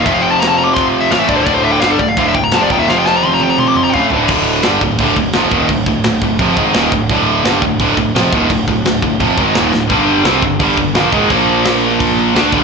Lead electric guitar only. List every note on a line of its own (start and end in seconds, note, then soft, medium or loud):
0.06 0.13 E5 medium
0.14 0.23 F5 medium
0.22 0.31 G5 medium
0.31 0.40 A5 medium
0.40 0.47 A#5 loud
0.48 0.57 A5 medium
0.58 0.64 A#5 loud
0.65 0.74 D6 loud
0.74 0.85 C6 medium
1.01 1.11 E5 loud
1.11 1.19 F5 loud
1.19 1.28 E5 loud
1.29 1.36 D5 medium
1.36 1.46 C5 medium
1.46 1.54 D5 loud
1.54 1.64 C5 medium
1.64 1.72 E5 loud
1.72 1.80 G5 loud
1.80 1.90 F5 medium
1.91 1.99 A4 medium
1.99 2.08 D5 medium
2.08 2.17 F5 loud
2.18 2.26 F5 medium
2.28 2.35 E5 medium
2.35 2.44 G5 loud
2.44 2.52 A#5 loud
2.54 2.62 A5 loud
2.61 2.66 D5 medium
2.71 2.79 G5 medium
2.79 2.88 E5 medium
2.90 2.97 F5 medium
2.99 3.08 G5 medium
3.08 3.15 A5 loud
3.16 3.26 A#5 medium
3.26 3.33 C6 loud
3.34 3.42 A#5 medium
3.41 3.49 G5 medium
3.50 3.58 A#5 medium
3.60 3.67 C6 medium
3.68 3.76 D6 loud
3.77 3.82 C6 medium
3.84 3.89 A#5 loud
3.90 3.94 G5 loud
3.94 4.05 F5 loud